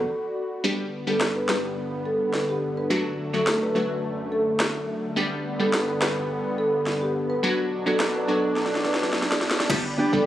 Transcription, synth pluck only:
0.64 0.84 G3 loud
0.64 0.85 B3 medium
0.64 0.85 D4 medium
0.64 0.85 G4 loud
1.07 1.27 G3 medium
1.07 1.27 B3 medium
1.07 1.27 D4 medium
1.07 1.27 G4 medium
1.49 1.69 G3 medium
1.49 1.70 B3 medium
1.49 1.70 D4 medium
1.49 1.70 G4 medium
2.90 3.11 F#3 medium
2.90 3.11 A3 medium
2.90 3.11 D4 medium
2.90 3.11 F#4 loud
3.33 3.53 F#3 medium
3.33 3.53 A3 medium
3.33 3.53 D4 medium
3.33 3.53 F#4 medium
3.75 3.96 F#3 medium
3.75 3.96 A3 medium
3.75 3.96 D4 medium
3.75 3.96 F#4 medium
5.16 5.37 G3 loud
5.16 5.37 B3 medium
5.16 5.37 D4 medium
5.16 5.37 G4 loud
5.59 5.79 G3 medium
5.59 5.80 B3 medium
5.59 5.80 D4 medium
5.59 5.80 G4 medium
6.01 6.22 G3 medium
6.01 6.22 B3 medium
6.01 6.22 D4 medium
6.01 6.22 G4 medium
7.43 7.64 F#3 medium
7.43 7.64 B3 medium
7.43 7.64 D4 medium
7.43 7.64 F#4 loud
7.86 8.06 F#3 medium
7.86 8.06 B3 medium
7.86 8.06 D4 medium
7.86 8.06 F#4 medium
8.28 8.49 F#3 medium
8.28 8.49 B3 medium
8.28 8.49 D4 medium
8.28 8.49 F#4 medium
9.70 9.90 G3 loud
9.70 9.90 B3 medium
9.70 9.90 D4 medium
9.70 9.90 G4 loud
10.13 10.26 G3 medium
10.13 10.26 B3 medium
10.13 10.26 D4 medium
10.13 10.26 G4 medium

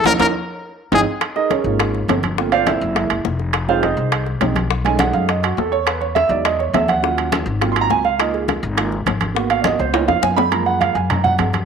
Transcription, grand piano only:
0.05 0.15 A#3 medium
0.05 0.15 C#4 medium
0.05 0.15 D#4 medium
0.20 0.29 A#3 medium
0.20 0.29 C#4 loud
0.20 0.29 D#4 medium
0.92 1.01 G#3 medium
0.92 1.01 C4 medium
0.92 1.02 D#4 loud
1.36 1.50 D#4 medium
1.36 1.50 G#4 medium
1.36 1.50 A#4 medium
1.36 1.50 D#5 medium
1.51 1.92 C#4 medium
1.51 1.92 G#4 medium
1.51 1.92 A#4 soft
1.51 1.91 C#5 medium
1.65 2.34 A#3 soft
1.65 2.34 D#4 soft
1.65 2.35 F4 medium
2.37 2.79 A3 soft
2.37 2.79 A#3 soft
2.37 2.80 C4 soft
2.37 2.51 F4 medium
2.52 2.67 F4 medium
2.52 2.67 C5 medium
2.52 2.67 D5 medium
2.52 2.66 F5 loud
2.67 2.95 E4 medium
2.67 3.08 E5 medium
2.95 3.15 G#3 soft
2.95 3.15 A#3 soft
2.95 3.16 E4 medium
3.68 3.88 G#3 medium
3.68 3.88 C4 medium
3.68 3.82 D#4 medium
3.68 3.83 F4 medium
3.68 3.82 G#4 medium
3.68 3.82 C5 medium
3.68 3.83 F5 medium
3.83 4.24 D#4 medium
3.83 4.24 G#4 medium
3.83 4.24 C5 medium
3.83 4.24 D#5 medium
4.40 4.54 G#3 soft
4.40 4.54 C4 soft
4.40 4.55 D#4 medium
4.84 5.26 G#3 medium
4.84 5.26 A3 medium
4.84 5.27 C#4 soft
4.84 5.27 D#4 medium
4.84 4.99 G#5 medium
5.00 5.14 F#5 medium
5.14 5.28 F5 medium
5.29 5.43 D#5 medium
5.43 5.57 F#4 medium
5.58 5.72 A4 medium
5.72 5.86 C#5 medium
5.86 6.01 B4 medium
6.01 6.15 C#5 medium
6.15 6.30 E5 loud
6.29 6.49 F#3 soft
6.29 6.50 G#3 soft
6.29 6.50 D#4 soft
6.29 6.44 D5 medium
6.45 6.59 D#5 medium
6.59 6.74 C#5 medium
6.74 6.88 E5 medium
6.88 7.29 F#5 medium
7.02 7.44 F#3 soft
7.02 7.44 C#4 soft
7.02 7.45 F4 medium
7.61 8.02 F#3 soft
7.61 8.03 A#3 soft
7.61 8.03 C4 soft
7.61 8.03 F4 medium
7.72 7.81 C6 medium
7.81 7.90 A#5 loud
7.91 8.05 G#5 medium
8.05 8.19 F5 medium
8.19 8.61 A#3 soft
8.19 8.61 D#4 soft
8.19 8.61 F4 medium
8.19 8.34 D#5 medium
8.34 8.43 G#4 medium
8.77 8.90 A#3 soft
8.77 8.90 D#4 soft
8.77 8.91 F4 soft
9.35 9.90 A#3 medium
9.35 9.90 B3 soft
9.35 9.91 F#4 medium
9.50 9.64 F5 medium
9.61 9.63 D5 soft
9.65 9.79 D#5 medium
9.80 9.94 C5 medium
9.93 10.35 A#3 soft
9.93 10.35 B3 soft
9.93 10.35 D#4 soft
9.93 10.35 F4 medium
9.93 10.08 C#5 medium
10.08 10.22 F5 medium
10.23 10.37 G#5 medium
10.36 10.51 B5 loud
10.51 10.93 F3 medium
10.51 10.93 G#3 soft
10.51 10.93 A#3 medium
10.51 10.66 A#5 medium
10.66 10.80 F#5 medium
10.80 10.95 F5 medium
10.94 11.09 G#5 medium
11.10 11.24 A#5 medium
11.24 11.33 F#5 loud

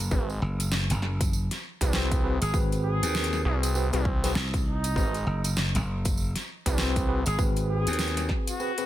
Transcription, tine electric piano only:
0.12 0.29 C4 medium
0.12 0.29 F#4 medium
0.12 0.29 G#4 medium
0.12 0.29 B4 medium
1.81 2.21 C4 medium
1.81 2.21 F#4 medium
1.81 2.21 G#4 medium
1.81 2.21 B4 loud
2.24 2.34 C4 medium
2.24 2.34 F#4 medium
2.24 2.34 G#4 medium
2.24 2.34 B4 medium
2.54 3.72 C4 medium
2.54 3.72 F#4 medium
2.54 3.72 G#4 medium
2.54 3.72 B4 loud
3.75 3.86 C4 medium
3.75 3.86 F#4 medium
3.75 3.86 G#4 medium
3.75 3.86 B4 medium
3.93 4.00 C4 medium
3.93 4.00 F#4 medium
3.93 4.00 G#4 medium
3.93 4.00 B4 medium
4.24 4.31 C4 loud
4.24 4.31 F#4 medium
4.24 4.31 G#4 medium
4.24 4.31 B4 loud
4.97 5.14 C4 medium
4.97 5.14 F#4 medium
4.97 5.14 G#4 medium
4.97 5.14 B4 medium
6.66 7.05 C4 medium
6.66 7.06 F#4 medium
6.66 7.06 G#4 medium
6.66 7.06 B4 loud
7.08 7.19 C4 medium
7.08 7.19 F#4 medium
7.08 7.19 G#4 medium
7.08 7.19 B4 loud
7.39 8.57 C4 medium
7.39 8.57 F#4 medium
7.39 8.57 G#4 medium
7.39 8.57 B4 loud
8.60 8.71 C4 medium
8.60 8.71 F#4 medium
8.60 8.71 G#4 medium
8.60 8.71 B4 medium
8.78 8.85 C4 medium
8.78 8.85 F#4 medium
8.78 8.85 G#4 medium
8.78 8.85 B4 medium

